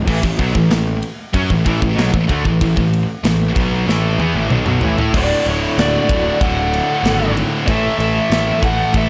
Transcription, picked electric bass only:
0.07 0.22 A1 medium
0.23 0.38 A1 medium
0.39 0.54 B1 medium
0.55 0.70 A1 medium
0.72 1.01 A1 medium
1.34 1.49 F#2 loud
1.50 1.65 A1 medium
1.66 1.81 A1 loud
1.82 1.96 A1 medium
1.98 2.13 B1 loud
2.14 2.28 A1 medium
2.29 2.44 D2 loud
2.45 2.60 A1 medium
2.61 2.76 A1 medium
2.77 3.06 A1 medium
3.24 3.53 A1 medium
3.56 3.85 B1 medium
3.88 4.17 A1 medium
4.19 4.34 E2 loud
4.34 4.49 A1 loud
4.50 4.65 B1 medium
4.66 4.81 B1 loud
4.82 4.97 A1 loud
4.98 5.13 A2 loud
5.14 5.33 D1 medium
5.46 5.66 D1 medium
5.78 5.97 D1 medium
6.10 6.29 D1 medium
6.41 6.80 D1 loud
7.03 7.43 G#1 loud
7.68 7.87 A1 medium
7.99 8.18 A1 loud
8.30 8.50 A1 loud
8.63 8.82 A1 loud
8.94 9.09 A1 loud

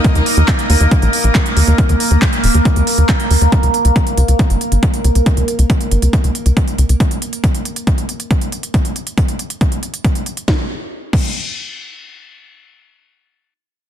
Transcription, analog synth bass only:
0.15 0.21 D#2 medium
0.37 0.43 D#2 medium
0.70 0.76 D#2 medium
0.81 0.87 D#2 medium
1.02 1.08 A#1 medium
1.24 1.30 A#1 medium
1.57 1.63 D#2 medium
1.68 1.74 D#2 medium
1.89 1.95 D#2 medium
2.11 2.17 D#2 medium
2.44 2.50 D#1 medium
2.55 2.61 D#2 medium
2.76 2.82 D#2 medium
2.98 3.04 D#2 medium
3.31 3.37 D#2 medium
3.41 3.47 D#2 medium
3.63 3.69 C#2 medium
3.85 3.91 C#2 medium
4.18 4.24 C#2 medium
4.28 4.34 C#2 medium
4.50 4.56 G#1 medium
4.72 4.78 G#1 medium
5.05 5.11 C#2 medium
5.15 5.21 C#2 medium
5.37 5.43 C#2 medium
5.59 5.65 C#2 medium
5.91 5.97 G#1 medium
6.02 6.08 C#2 medium
6.24 6.30 C#2 medium
6.46 6.52 C#2 medium
6.78 6.84 C#2 medium
6.89 6.95 C#2 medium

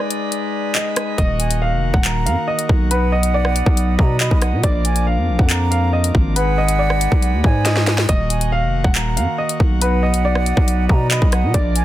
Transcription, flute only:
1.40 1.60 G#5 medium
2.05 2.45 A#5 medium
2.91 3.95 F#5 loud
3.99 4.19 A#5 medium
4.20 4.41 B5 medium
4.42 4.62 F#5 medium
4.85 5.06 G#5 medium
5.50 5.91 A#5 medium
6.36 7.40 F#5 loud
7.44 8.05 G#5 loud
8.30 8.51 G#5 medium
8.96 9.36 A#5 medium
9.82 10.86 F#5 loud
10.90 11.10 A#5 medium
11.11 11.31 B5 medium
11.32 11.53 F#5 medium
11.76 11.85 G#5 medium

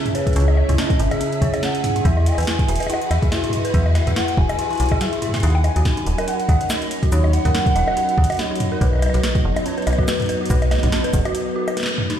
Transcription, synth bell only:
0.15 0.22 C#5 loud
0.27 0.29 G#4 medium
0.36 0.43 C#4 medium
0.69 0.71 E4 medium
0.78 0.88 C#4 loud
0.90 0.98 C#4 loud
1.11 1.16 G#4 loud
1.21 1.25 C#4 medium
1.42 1.48 C#5 loud
1.54 1.56 G#4 medium
1.63 1.69 C#4 medium
1.96 1.98 E4 medium
2.05 2.15 E4 loud
2.17 2.25 E4 loud
2.38 2.43 B4 loud
2.47 2.51 E4 medium
2.68 2.75 E5 loud
2.80 2.83 B4 medium
2.90 2.96 E4 medium
3.23 3.25 G#4 medium
3.32 3.42 E4 loud
3.44 3.51 E4 loud
3.65 3.70 B4 loud
3.74 3.78 E4 medium
3.95 4.02 E5 loud
4.07 4.09 B4 medium
4.16 4.23 E4 medium
4.49 4.52 G#4 medium
4.59 4.69 E4 loud
4.70 4.78 E4 loud
4.80 4.84 E4 loud
4.92 4.94 G#4 loud
5.01 5.07 E4 medium
5.13 5.20 E4 medium
5.22 5.32 E4 loud
5.34 5.39 E5 loud
5.43 5.50 D#4 medium
5.76 5.78 F#4 medium
5.85 5.95 D#4 medium
5.97 6.05 D#4 loud
6.18 6.23 A#4 loud
6.28 6.32 D#4 medium
6.49 6.55 D#5 loud
6.61 6.63 A#4 medium
6.70 6.76 D#4 medium
7.03 7.05 F#4 medium
7.12 7.22 D#4 medium
7.24 7.32 D#4 loud
7.45 7.50 A#4 loud
7.54 7.58 D#4 medium
7.76 7.82 D#5 loud
7.87 7.90 A#4 medium
7.97 8.03 D#4 medium
8.30 8.32 F#4 medium
8.39 8.49 D#4 medium
8.51 8.58 D#4 loud
8.72 8.77 A#4 loud
8.81 8.85 B4 medium
9.02 9.09 B4 loud
9.14 9.16 F#4 medium
9.24 9.30 B4 medium
9.56 9.59 D#4 medium
9.66 9.76 C#4 medium
9.78 9.85 B4 loud
9.99 10.04 F#4 loud
10.08 10.12 B4 medium
10.29 10.36 B4 loud
10.41 10.43 F#4 medium
10.50 10.57 B4 medium
10.83 10.85 D#4 medium
10.92 11.02 C#4 medium
11.04 11.12 B4 loud
11.25 11.31 F#4 loud
11.35 11.39 B4 medium
11.56 11.62 F#4 loud
11.68 11.75 B4 medium
11.77 11.84 B4 medium
12.10 12.18 D#4 loud

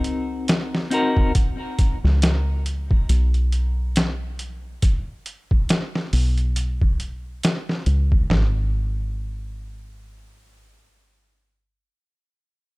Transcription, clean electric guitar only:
0.00 0.86 C4 medium
0.00 0.87 D#4 medium
0.00 0.88 F#4 medium
0.00 0.89 A#4 medium
0.91 1.30 C4 medium
0.91 1.31 D#4 medium
0.91 1.31 F#4 medium
0.91 1.32 A#4 medium

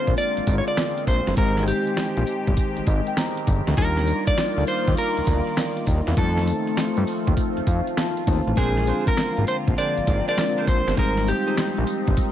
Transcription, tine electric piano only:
0.00 1.33 G#3 medium
0.00 1.33 C4 medium
0.00 1.33 D4 medium
0.00 1.34 F4 medium
0.00 1.34 A#4 medium
1.36 3.73 G#3 medium
1.36 3.73 C4 medium
1.36 3.73 D#4 medium
1.36 3.74 G4 medium
1.36 3.74 C5 medium
2.88 3.06 D#5 medium
3.08 3.17 G5 medium
3.18 3.74 A#5 medium
3.77 6.13 G3 medium
3.77 6.13 D4 medium
3.77 6.14 D#4 medium
3.77 6.14 F4 medium
3.77 6.14 A#4 medium
6.17 6.26 G3 medium
6.17 8.23 C4 medium
6.17 8.23 D#4 medium
6.17 8.24 F4 medium
6.17 8.24 C5 medium
6.23 8.26 A3 medium
7.68 7.95 F5 medium
7.97 8.25 A5 medium
8.27 8.57 A3 medium
8.27 8.55 C4 medium
8.27 8.57 D#4 medium
8.27 8.56 F4 medium
8.27 8.58 C5 medium
8.27 8.55 A5 medium
8.56 10.33 G#3 medium
8.56 10.33 C4 medium
8.56 10.33 D4 medium
8.56 10.34 F4 medium
8.56 10.34 A#4 medium
10.37 10.95 G#3 medium
10.37 10.96 C4 soft
10.37 10.97 D4 soft
10.37 10.98 F4 soft
10.37 10.98 A#4 medium
10.97 12.32 G3 medium
10.97 12.32 G#3 medium
10.97 12.32 C4 medium
10.97 12.32 D#4 medium

